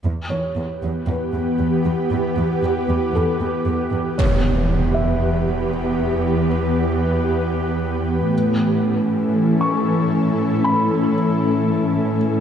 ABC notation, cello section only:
X:1
M:4/4
L:1/8
Q:1/4=116
K:Edor
V:1 name="Cello section" clef=bass
E,, E,, E,, E,, E,, E,, E,, E,, | E,, E,, E,, E,, E,, E,, E,, E,, | E,,8- | E,,8 |
A,,8- | A,,8 |]